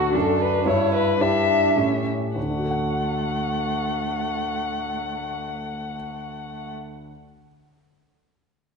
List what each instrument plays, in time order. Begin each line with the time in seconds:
Already playing: grand piano D2 D4 F#4 A4, cello F#4, violin F#4
0.14 grand piano F#2 D4 F#4 A4, cello D4, violin A4
0.41 violin B4
0.66 grand piano G2, cello E4, violin C#5
0.95 violin B4
1.20 cello D4, grand piano D4 E4 G4, violin E5
1.76 grand piano A2 C#4 E4 G4, cello C#4
2.35 grand piano D2, cello A3, violin F#5
2.43 grand piano D3
2.50 grand piano D4
2.56 grand piano F#4
2.64 grand piano A4
2.71 grand piano F#5